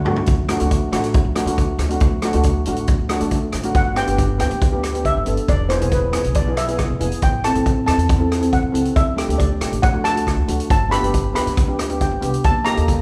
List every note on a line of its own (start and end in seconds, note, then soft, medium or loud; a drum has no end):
0.00 0.25 D2 medium
0.05 0.27 A3 medium
0.05 0.28 D4 medium
0.05 0.28 F#4 loud
0.05 floor tom loud
0.16 floor tom medium
0.26 0.58 D2 medium
0.26 kick loud
0.26 closed hi-hat medium
0.49 0.56 A3 medium
0.49 0.56 D4 medium
0.49 0.57 F#4 medium
0.49 cross-stick medium
0.49 closed hi-hat medium
0.60 0.91 D2 medium
0.60 0.79 A3 medium
0.60 0.80 D4 medium
0.60 0.80 F#4 medium
0.60 closed hi-hat medium
0.71 kick medium
0.71 closed hi-hat medium
0.92 1.23 A1 medium
0.92 1.18 A3 medium
0.92 1.19 D4 medium
0.92 1.19 F#4 medium
0.92 cross-stick medium
0.92 closed hi-hat medium
1.03 closed hi-hat medium
1.14 kick loud
1.14 closed hi-hat medium
1.25 1.45 D2 medium
1.35 1.42 A3 medium
1.35 1.43 D4 medium
1.35 1.43 F#4 medium
1.35 cross-stick medium
1.35 closed hi-hat medium
1.46 1.76 D2 medium
1.46 1.73 A3 medium
1.46 1.73 D4 medium
1.46 1.73 F#4 medium
1.46 closed hi-hat medium
1.58 kick medium
1.58 closed hi-hat medium
1.78 1.99 D2 medium
1.78 cross-stick medium
1.78 closed hi-hat medium
1.89 2.09 A3 medium
1.89 2.10 D4 medium
1.89 2.10 F#4 medium
1.89 closed hi-hat medium
2.00 2.31 D2 loud
2.00 kick loud
2.00 closed hi-hat medium
2.22 2.29 A3 medium
2.22 2.30 D4 medium
2.22 2.30 F#4 medium
2.22 cross-stick medium
2.22 closed hi-hat medium
2.33 2.64 D2 medium
2.33 2.53 A3 medium
2.33 2.53 D4 medium
2.33 2.54 F#4 medium
2.33 closed hi-hat medium
2.43 kick medium
2.43 closed hi-hat medium
2.65 2.97 A1 medium
2.65 2.93 A3 medium
2.65 2.93 D4 medium
2.65 2.93 F#4 medium
2.65 closed hi-hat medium
2.76 closed hi-hat medium
2.87 kick loud
2.87 closed hi-hat medium
2.99 3.19 D2 medium
3.09 3.16 A3 medium
3.09 3.17 D4 medium
3.09 3.17 F#4 medium
3.09 cross-stick medium
3.09 closed hi-hat medium
3.20 3.51 D2 medium
3.20 3.46 A3 medium
3.20 3.47 D4 medium
3.20 3.47 A4 medium
3.20 closed hi-hat medium
3.31 kick medium
3.31 closed hi-hat medium
3.52 3.73 G#1 medium
3.52 cross-stick medium
3.52 closed hi-hat medium
3.63 3.74 A3 medium
3.63 3.75 D4 medium
3.63 3.75 F#4 medium
3.63 closed hi-hat medium
3.74 4.05 G1 medium
3.74 3.98 F#5 medium
3.74 kick loud
3.74 closed hi-hat medium
3.95 4.02 B3 medium
3.95 4.03 D4 medium
3.95 4.03 G4 medium
3.95 4.37 G5 medium
3.95 cross-stick medium
3.95 closed hi-hat medium
4.07 4.38 G1 medium
4.07 4.27 B3 medium
4.07 4.27 D4 medium
4.07 4.28 G4 medium
4.07 closed hi-hat medium
4.18 kick medium
4.18 closed hi-hat medium
4.38 4.50 D2 medium
4.38 4.59 B3 medium
4.38 4.59 D4 medium
4.38 4.60 G4 medium
4.38 4.81 G5 medium
4.38 cross-stick medium
4.38 closed hi-hat medium
4.51 5.12 D2 loud
4.51 closed hi-hat soft
4.62 kick loud
4.62 closed hi-hat medium
4.71 4.85 B3 medium
4.71 4.85 D4 medium
4.71 4.85 G4 medium
4.83 cross-stick medium
4.83 closed hi-hat medium
4.93 5.13 B3 medium
4.93 5.14 D4 medium
4.93 5.14 G4 medium
4.93 closed hi-hat medium
5.05 5.50 E5 medium
5.05 kick medium
5.05 closed hi-hat soft
5.17 5.26 G1 medium
5.26 5.37 G1 medium
5.26 5.48 B3 medium
5.26 5.49 D4 medium
5.26 5.49 A4 medium
5.26 closed hi-hat medium
5.37 closed hi-hat medium
5.48 5.79 E1 medium
5.48 5.71 D5 medium
5.48 kick loud
5.48 closed hi-hat medium
5.69 5.76 B3 medium
5.69 5.76 E4 medium
5.69 5.77 G#4 medium
5.69 5.90 C5 medium
5.69 cross-stick medium
5.69 closed hi-hat medium
5.80 6.12 E1 medium
5.80 6.00 B3 medium
5.80 6.00 E4 medium
5.80 6.01 G#4 medium
5.80 closed hi-hat medium
5.92 6.37 B4 medium
5.92 kick medium
5.92 closed hi-hat medium
6.12 6.24 B1 medium
6.12 6.32 B3 medium
6.12 6.33 E4 medium
6.12 6.33 G#4 medium
6.12 cross-stick medium
6.12 closed hi-hat medium
6.24 6.86 B1 medium
6.24 closed hi-hat medium
6.34 6.58 D5 medium
6.34 kick loud
6.34 closed hi-hat medium
6.47 6.60 B3 medium
6.47 6.60 E4 medium
6.47 6.60 G#4 medium
6.57 6.98 E5 medium
6.57 cross-stick medium
6.57 closed hi-hat medium
6.68 6.87 B3 medium
6.68 6.88 E4 medium
6.68 6.89 G#4 medium
6.68 closed hi-hat medium
6.78 kick medium
6.78 cross-stick medium
6.78 closed hi-hat medium
6.90 7.00 E1 medium
6.99 7.11 E1 medium
6.99 7.21 B3 medium
6.99 7.22 E4 medium
6.99 7.22 G#4 medium
6.99 closed hi-hat medium
7.12 closed hi-hat medium
7.22 7.53 A1 medium
7.22 7.43 G5 medium
7.22 kick loud
7.22 closed hi-hat medium
7.44 7.51 C4 medium
7.44 7.51 E4 medium
7.44 7.51 A4 medium
7.44 7.85 A5 medium
7.44 cross-stick medium
7.44 closed hi-hat medium
7.55 7.85 A1 medium
7.55 7.74 C4 medium
7.55 7.75 E4 medium
7.55 7.75 A4 medium
7.55 closed hi-hat medium
7.66 kick medium
7.66 closed hi-hat medium
7.86 7.97 E2 medium
7.86 8.06 C4 medium
7.86 8.07 E4 medium
7.86 8.07 A4 medium
7.86 8.27 A5 medium
7.86 cross-stick medium
7.86 closed hi-hat medium
7.97 8.59 E2 medium
7.97 closed hi-hat medium
8.09 kick loud
8.09 closed hi-hat medium
8.19 8.32 C4 medium
8.19 8.33 E4 medium
8.19 8.33 A4 medium
8.32 cross-stick medium
8.32 closed hi-hat medium
8.40 8.60 C4 medium
8.40 8.61 E4 medium
8.40 8.61 A4 medium
8.40 closed hi-hat medium
8.53 8.97 F#5 medium
8.53 kick medium
8.53 closed hi-hat medium
8.62 8.73 A1 medium
8.72 8.84 C#2 medium
8.72 8.95 C4 medium
8.72 8.95 E4 medium
8.72 8.96 A4 medium
8.72 closed hi-hat medium
8.85 closed hi-hat medium
8.96 9.26 D2 medium
8.96 9.41 E5 medium
8.96 kick loud
8.96 closed hi-hat medium
9.16 9.24 A3 medium
9.16 9.24 D4 medium
9.16 9.24 G4 medium
9.16 cross-stick medium
9.16 closed hi-hat medium
9.28 9.59 D2 medium
9.28 9.48 A3 medium
9.28 9.48 D4 medium
9.28 9.49 G4 medium
9.28 closed hi-hat medium
9.38 9.84 D5 medium
9.38 kick medium
9.38 closed hi-hat medium
9.60 9.71 A1 medium
9.60 9.81 A3 medium
9.60 9.81 D4 medium
9.60 9.82 G4 medium
9.60 cross-stick medium
9.60 closed hi-hat medium
9.72 9.82 A1 medium
9.72 closed hi-hat medium
9.82 10.34 D2 medium
9.82 10.05 F#5 medium
9.82 kick loud
9.82 closed hi-hat medium
9.93 10.06 A3 medium
9.93 10.07 D4 medium
9.93 10.07 F#4 medium
10.04 10.45 A5 medium
10.04 cross-stick medium
10.04 closed hi-hat medium
10.14 10.35 A3 medium
10.14 10.35 D4 medium
10.14 10.35 F#4 medium
10.14 closed hi-hat medium
10.27 kick medium
10.27 cross-stick medium
10.27 closed hi-hat medium
10.37 10.47 D2 medium
10.47 10.58 D2 medium
10.47 10.69 A3 medium
10.47 10.70 D4 medium
10.47 10.70 F#4 medium
10.47 closed hi-hat medium
10.60 closed hi-hat medium
10.70 11.00 G1 medium
10.70 10.91 A5 medium
10.70 kick loud
10.70 closed hi-hat medium
10.89 10.97 B3 medium
10.89 10.98 D4 medium
10.89 10.98 G4 medium
10.89 11.34 B5 medium
10.89 cross-stick medium
10.89 closed hi-hat medium
11.01 11.33 G1 medium
11.01 11.21 B3 medium
11.01 11.22 D4 medium
11.01 11.22 G4 medium
11.01 closed hi-hat medium
11.14 kick medium
11.14 closed hi-hat medium
11.33 11.45 D2 medium
11.33 11.54 B3 medium
11.33 11.54 D4 medium
11.33 11.54 G4 medium
11.33 11.76 B5 medium
11.33 cross-stick medium
11.33 closed hi-hat medium
11.46 12.08 D2 medium
11.46 closed hi-hat medium
11.57 kick loud
11.57 closed hi-hat medium
11.67 11.81 B3 medium
11.67 11.81 D4 medium
11.67 11.81 G4 medium
11.79 cross-stick medium
11.79 closed hi-hat medium
11.89 12.09 B3 medium
11.89 12.09 D4 medium
11.89 12.10 G4 medium
11.89 closed hi-hat medium
12.01 12.46 G5 medium
12.01 kick medium
12.01 closed hi-hat soft
12.11 12.21 G1 medium
12.21 12.33 C2 medium
12.21 12.43 B3 medium
12.21 12.44 D4 medium
12.21 12.44 G4 medium
12.21 closed hi-hat medium
12.34 closed hi-hat medium
12.44 12.75 D#2 medium
12.44 12.67 A5 medium
12.44 kick loud
12.44 closed hi-hat medium
12.65 12.72 A#3 medium
12.65 12.72 D#4 medium
12.65 12.73 G4 medium
12.65 13.02 A#5 loud
12.65 cross-stick medium
12.65 closed hi-hat medium
12.76 13.02 D#2 medium
12.76 12.96 A#3 medium
12.76 12.96 D#4 medium
12.76 12.97 A4 medium
12.76 closed hi-hat medium
12.88 kick medium
12.88 closed hi-hat medium